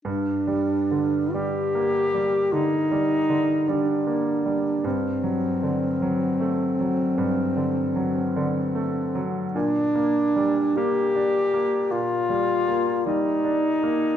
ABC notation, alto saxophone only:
X:1
M:4/4
L:1/16
Q:1/4=51
K:Gm
V:1 name="Alto saxophone"
D4 G4 E4 D4 | C12- C3 z | D4 G4 F4 E4 |]